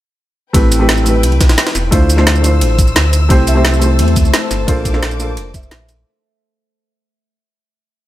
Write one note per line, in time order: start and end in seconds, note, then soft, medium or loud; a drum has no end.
0.53 1.25 A1 loud
0.53 0.78 A3 loud
0.53 0.78 C4 medium
0.53 0.78 E4 medium
0.53 0.78 G4 medium
0.53 1.91 B4 medium
0.53 0.79 B4 loud
0.53 1.91 G5 medium
0.53 kick loud
0.53 closed hi-hat loud
0.53 ride medium
0.72 closed hi-hat medium
0.72 ride medium
0.72 shaker medium
0.79 1.02 A3 medium
0.79 1.03 C4 medium
0.79 1.04 E4 medium
0.79 1.04 G4 medium
0.79 1.05 B4 loud
0.89 snare loud
0.89 closed hi-hat loud
0.89 ride medium
0.97 shaker soft
1.04 1.89 A3 medium
1.04 1.90 C4 medium
1.04 1.90 E4 medium
1.04 1.91 G4 medium
1.04 closed hi-hat medium
1.04 ride medium
1.04 shaker medium
1.08 1.91 B4 medium
1.23 1.51 C2 loud
1.23 closed hi-hat medium
1.23 ride medium
1.32 ride soft
1.41 kick loud
1.41 snare loud
1.41 closed hi-hat medium
1.41 ride medium
1.41 shaker medium
1.49 1.57 A1 medium
1.49 snare loud
1.49 ride medium
1.49 shaker soft
1.58 snare loud
1.58 closed hi-hat loud
1.58 ride medium
1.67 snare loud
1.67 ride medium
1.75 1.91 E1 medium
1.75 snare soft
1.75 closed hi-hat medium
1.75 ride medium
1.75 shaker medium
1.91 2.63 D2 loud
1.91 2.15 A3 loud
1.91 2.16 D4 medium
1.91 2.16 E4 medium
1.91 2.16 F4 medium
1.91 3.29 C5 medium
1.91 2.17 C5 loud
1.91 4.65 E6 medium
1.91 kick loud
1.91 closed hi-hat medium
1.91 ride medium
2.10 closed hi-hat medium
2.10 ride medium
2.10 shaker medium
2.17 2.40 A3 medium
2.17 2.41 D4 medium
2.17 2.42 E4 medium
2.17 2.42 F4 medium
2.17 2.42 C5 loud
2.17 snare medium
2.27 snare loud
2.27 closed hi-hat medium
2.27 ride medium
2.36 ride soft
2.36 shaker soft
2.42 3.27 A3 medium
2.42 3.28 D4 medium
2.42 3.28 E4 medium
2.42 3.29 F4 medium
2.42 closed hi-hat medium
2.42 ride medium
2.42 shaker medium
2.46 3.29 C5 medium
2.61 2.95 A1 loud
2.61 closed hi-hat medium
2.61 ride medium
2.79 kick loud
2.79 closed hi-hat medium
2.79 ride medium
2.79 shaker medium
2.87 shaker soft
2.96 3.29 D2 loud
2.96 snare loud
2.96 closed hi-hat loud
2.96 ride medium
3.13 closed hi-hat medium
3.13 ride medium
3.13 shaker medium
3.29 4.01 C2 loud
3.29 3.53 A3 loud
3.29 3.54 C4 medium
3.29 3.54 E4 medium
3.29 3.54 G4 medium
3.29 6.03 C5 medium
3.29 3.55 C5 loud
3.29 6.03 A5 medium
3.29 kick loud
3.29 closed hi-hat medium
3.29 ride medium
3.47 5.20 E5 loud
3.47 closed hi-hat medium
3.47 ride medium
3.47 shaker medium
3.55 3.78 A3 medium
3.55 3.79 C4 medium
3.55 3.80 E4 medium
3.55 3.80 G4 medium
3.55 3.80 C5 loud
3.65 snare loud
3.65 closed hi-hat medium
3.65 ride medium
3.73 shaker soft
3.79 4.65 A3 medium
3.79 4.65 C4 medium
3.79 4.66 E4 medium
3.79 4.67 G4 medium
3.79 closed hi-hat medium
3.79 ride medium
3.79 shaker medium
3.84 4.67 C5 medium
3.99 4.27 E2 loud
3.99 7.32 A3 loud
3.99 closed hi-hat medium
3.99 ride medium
4.08 ride soft
4.16 kick loud
4.16 closed hi-hat medium
4.16 ride medium
4.16 shaker medium
4.25 4.33 C2 medium
4.25 shaker soft
4.34 4.68 A4 medium
4.34 snare loud
4.34 closed hi-hat medium
4.34 ride medium
4.51 4.66 G1 medium
4.51 snare soft
4.51 closed hi-hat medium
4.51 ride medium
4.51 shaker medium
4.67 5.39 A#1 loud
4.67 4.91 A#3 loud
4.67 4.92 D4 medium
4.67 4.92 F4 medium
4.67 6.88 A4 loud
4.67 4.92 A4 medium
4.67 4.92 C5 loud
4.67 6.05 D6 medium
4.67 kick loud
4.67 closed hi-hat medium
4.67 ride medium
4.85 kick medium
4.85 closed hi-hat medium
4.85 ride medium
4.85 shaker medium
4.93 5.16 A#3 medium
4.93 5.17 D4 medium
4.93 5.18 F4 medium
4.93 5.18 A4 medium
4.93 5.18 C5 medium
4.93 snare medium
5.03 7.01 C5 loud
5.03 snare loud
5.03 closed hi-hat medium
5.03 ride medium
5.11 closed hi-hat soft
5.11 ride soft
5.11 shaker soft
5.17 6.03 A#3 medium
5.17 6.03 D4 medium
5.17 6.04 F4 medium
5.17 6.05 A4 medium
5.17 6.65 A5 medium
5.17 closed hi-hat medium
5.17 ride medium
5.17 shaker medium
5.22 6.05 C5 medium
5.37 5.70 F1 loud
5.37 closed hi-hat medium
5.37 ride medium
5.54 7.27 E5 loud
5.54 kick loud
5.54 closed hi-hat medium
5.54 ride medium
5.54 shaker medium
5.63 shaker soft
5.71 6.05 A#1 loud
5.71 snare loud
5.71 closed hi-hat medium
5.71 ride medium
5.89 closed hi-hat medium
5.89 ride medium
5.89 shaker medium